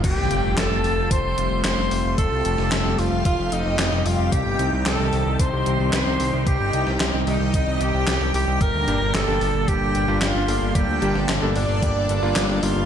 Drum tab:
CC |x---------------|----------------|----------------|----------------|
HH |x-x-x-o-x-x-x-o-|x-x-x-o-x-x-x-o-|x-x-x-o-x-x-x-o-|x-x-x-o-x-x-x-o-|
CP |----x-------x---|----x-------x---|----x-------x---|----x-------x---|
SD |----o-------o---|---oo-------oo--|----o-------o---|---oo-------oo--|
BD |o-------o-------|o-------o-------|o-------o-------|o-------o-------|

CC |----------------|----------------|
HH |x-x-x-o-x-x-x-o-|x-x-x-o-x-x-x-o-|
CP |----x-------x---|----x-------x---|
SD |----o-------o---|---oo-------oo--|
BD |o-------o-------|o-------o-------|